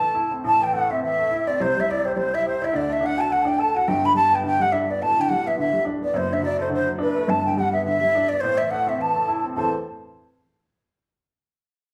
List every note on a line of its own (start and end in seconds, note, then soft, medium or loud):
0.00 0.40 A2 medium
0.00 0.15 A3 soft
0.00 0.33 A5 loud
0.15 0.31 E4 medium
0.31 0.43 C4 soft
0.44 1.55 A1 medium
0.44 1.55 A2 medium
0.44 0.64 A5 medium
0.44 0.65 A5 loud
0.61 0.73 E3 soft
0.61 0.75 G5 medium
0.61 0.74 G5 medium
0.73 0.89 A3 medium
0.73 0.91 F#5 medium
0.73 0.92 F#5 medium
0.90 1.01 C4 medium
0.90 1.02 E5 medium
0.90 1.03 E5 medium
1.01 1.17 E3 soft
1.01 1.51 E5 medium
1.01 1.49 E5 loud
1.19 1.31 A3 soft
1.31 1.47 E4 medium
1.47 1.59 C4 medium
1.47 1.63 D5 medium
1.60 2.70 C2 medium
1.60 2.71 C3 medium
1.60 1.89 C5 medium
1.60 1.81 C5 loud
1.77 1.88 G3 medium
1.77 1.92 E5 loud
1.89 2.04 E4 medium
1.89 2.06 D5 medium
1.89 2.09 D5 loud
2.05 2.16 G4 medium
2.05 2.17 C5 medium
2.05 2.14 C5 medium
2.14 2.32 G3 medium
2.14 2.36 C5 medium
2.14 2.18 D5 medium
2.34 2.45 E4 medium
2.34 2.45 E5 medium
2.34 2.46 E5 loud
2.46 2.62 G4 medium
2.46 2.63 C5 medium
2.46 2.66 C5 medium
2.62 2.73 E4 medium
2.62 2.76 E5 medium
2.62 2.78 E5 medium
2.73 3.83 D2 medium
2.73 3.84 D3 medium
2.73 2.91 D5 medium
2.73 2.94 D5 loud
2.89 3.01 A3 soft
2.89 3.05 E5 medium
2.89 3.07 E5 loud
3.01 3.17 D4 medium
3.01 3.20 F#5 loud
3.06 3.22 F#5 loud
3.17 3.29 F#4 soft
3.17 3.32 A5 medium
3.17 3.34 A5 medium
3.29 3.45 A3 soft
3.29 3.44 F#5 medium
3.29 3.50 F#5 loud
3.42 3.58 D4 medium
3.42 3.60 G5 medium
3.42 3.48 A5 medium
3.48 3.62 G5 loud
3.58 3.75 A4 medium
3.58 3.76 A5 loud
3.58 3.78 A5 medium
3.75 3.87 F#4 medium
3.75 3.86 F#5 medium
3.75 3.89 F#5 loud
3.87 4.98 G1 medium
3.87 4.98 G2 medium
3.87 4.18 G5 medium
3.87 4.07 G5 loud
4.03 4.15 D3 soft
4.03 4.15 B5 loud
4.15 4.31 G3 medium
4.15 4.37 A5 loud
4.15 4.33 A5 medium
4.31 4.43 B3 medium
4.31 4.44 G5 medium
4.35 4.46 G5 medium
4.44 4.60 D3 medium
4.44 4.65 G5 medium
4.44 4.63 G5 loud
4.60 4.72 G3 medium
4.60 4.74 F#5 loud
4.60 4.76 F#5 medium
4.72 4.88 D4 medium
4.72 4.92 E5 medium
4.72 4.93 E5 medium
4.89 5.01 B3 medium
4.89 5.04 D5 medium
4.89 5.02 D5 medium
5.02 6.12 D1 medium
5.02 6.12 D2 medium
5.02 5.22 A5 loud
5.02 5.32 A5 medium
5.19 5.30 D3 medium
5.19 5.30 G5 loud
5.29 5.46 G3 medium
5.29 5.49 F#5 loud
5.29 5.49 F#5 medium
5.46 5.58 B3 medium
5.46 5.58 E5 medium
5.46 5.59 E5 medium
5.58 5.74 D3 medium
5.58 5.84 E5 loud
5.58 5.84 E5 medium
5.73 5.86 G3 soft
5.85 6.02 D4 medium
6.02 6.14 B3 soft
6.02 6.19 D5 medium
6.02 6.18 D5 medium
6.14 7.25 F#1 medium
6.14 7.25 F#2 medium
6.14 6.34 C5 medium
6.14 6.35 C5 medium
6.31 6.43 D3 soft
6.31 6.44 E5 medium
6.31 6.47 E5 medium
6.43 6.59 F#3 medium
6.43 6.59 D5 loud
6.43 6.63 D5 medium
6.59 6.71 A3 medium
6.59 6.71 C5 medium
6.59 6.73 C5 medium
6.70 6.87 D3 medium
6.70 6.88 C5 loud
6.74 6.88 C5 medium
6.86 6.99 F#3 soft
6.99 7.15 D4 medium
6.99 7.31 B4 medium
7.16 7.29 A3 medium
7.28 8.39 G1 medium
7.28 8.39 G2 medium
7.28 7.60 A5 medium
7.28 7.45 A5 medium
7.45 7.57 D3 soft
7.45 7.56 G5 medium
7.57 7.73 G3 medium
7.57 7.72 F#5 medium
7.57 7.74 F#5 medium
7.73 7.85 B3 medium
7.73 7.85 E5 medium
7.85 8.02 D3 medium
7.85 8.30 E5 loud
7.85 8.32 E5 medium
8.01 8.13 G3 soft
8.15 8.31 D4 medium
8.28 8.43 B3 soft
8.28 8.42 D5 medium
8.28 8.45 D5 medium
8.40 9.53 A1 medium
8.40 9.53 A2 medium
8.40 8.59 C5 loud
8.40 8.62 C5 medium
8.58 8.72 E3 soft
8.58 8.72 E5 medium
8.58 8.75 E5 medium
8.71 8.87 A3 soft
8.71 8.90 F#5 loud
8.71 8.90 F#5 medium
8.87 8.99 C4 medium
8.87 9.03 E5 medium
8.87 9.02 E5 medium
8.99 9.15 E3 medium
8.99 9.45 A5 medium
9.16 9.28 A3 soft
9.28 9.44 E4 medium
9.43 9.56 C4 soft
9.56 9.72 A1 medium
9.56 9.72 E2 medium
9.56 9.72 E3 medium
9.56 9.72 C4 medium
9.56 9.72 A4 medium
9.56 9.73 C5 medium
9.56 9.72 A5 medium